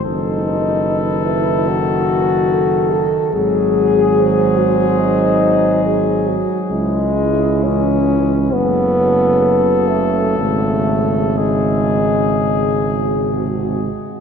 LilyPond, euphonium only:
\new Staff \with { instrumentName = "Euphonium" } { \time 4/4 \key gis \phrygian \tempo 4 = 68 dis'4. e'8 fis'4. a'8 | gis'4. fis'8 dis'4. r8 | gis4 cis'4 b4. a8 | a4 gis2 r4 | }